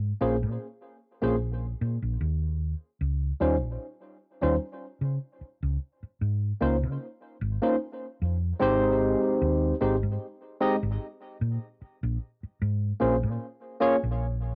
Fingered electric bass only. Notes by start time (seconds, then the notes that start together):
Already playing: G#2
0.21 A#1
0.43 A#2
1.22 A#1
1.81 A#2
2.02 A#1
2.21 D#2
3.01 C#2
3.41 D#2
3.62 A#1
4.43 D#2
5.01 C#3
5.41 muted fingered electric bass stroke
5.62 C#2
6.03 muted fingered electric bass stroke
6.21 G#2
6.61 C#2
6.83 C#3
7.41 G#1
8.22 F2
8.61 G#1
9.42 D#2
9.81 G#1
10.03 G#2
10.83 G#1
11.41 A#2
11.82 muted fingered electric bass stroke
12.03 A#1
12.43 muted fingered electric bass stroke
12.62 G#2
13.02 A#1
13.23 A#2
14.03 A#1